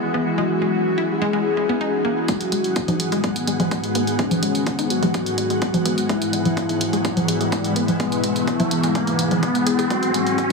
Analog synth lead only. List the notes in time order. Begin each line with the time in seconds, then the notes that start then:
0.38 F#4
1.10 G#4
2.28 F#4
4.19 C#4
4.90 F#4
6.09 E4
8.00 B3
8.71 B3
9.90 F#4